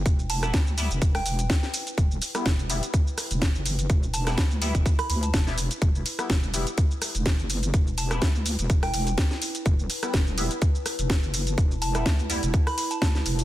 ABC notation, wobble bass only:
X:1
M:4/4
L:1/16
Q:"Swing 16ths" 1/4=125
K:Em
V:1 name="Wobble bass" clef=bass
E,,,4 D,,3 E,,, E,,,2 E,,,2 z4 | E,,,2 z2 E,,,3 z4 E,,,2 F,,,3 | E,,,4 D,,3 E,,, z2 D,,2 E,,,3 z | E,,,2 z2 E,,,3 z4 E,,,2 F,,,3 |
E,,,4 D,,3 E,,, E,,,2 E,,,2 z4 | E,,,2 z2 E,,,3 z4 E,,,2 F,,,3 | E,,,4 D,,3 E,,, z4 D,,2 E,,,2 |]